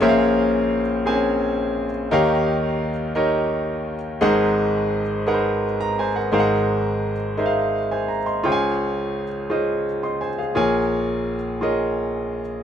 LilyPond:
<<
  \new Staff \with { instrumentName = "Grand piano" } { \time 6/8 \key des \major \tempo 4. = 57 << { r2. | r2. | r2 r16 bes''16 <c'' aes''>16 <bes' ges''>16~ | <bes' ges''>16 r2 <c'' aes''>16 bes''16 <ees'' c'''>16~ |
<ees'' c'''>16 r2 <ees'' c'''>16 <c'' aes''>16 <aes' f''>16~ | <aes' f''>16 r2 r8. | } \\ { <des' aes' bes' c'' fes'' f''>4 r8 <c' des' aes' bes' c'' aes''>4 r8 | <ees' g' bes' des'' f''>4 r8 <ees' g' bes' des'' ees''>4 r8 | <ees' aes' bes' c'' ges''>4 r8 <ees' aes' bes' ces'' c'' ges''>4 r8 | <ees' aes' bes' c'' f'' ges''>4 r8 <ees' aes' bes' c'' fes'' f''>4 r8 |
<f' aes' c'' des'' g'' aes''>4 r8 <f' aes' c'' des'' ees''>4 r8 | <f' aes' bes' des'' aes''>4 r8 <f' aes' bes' des'' ees''>4 r8 | } >> }
  \new Staff \with { instrumentName = "Grand piano" } { \clef bass \time 6/8 \key des \major <bes,, bes,>2. | <ees, ees>2. | <aes,, aes,>2. | <aes,, aes,>2. |
<des, des>2. | <bes,, bes,>2. | }
>>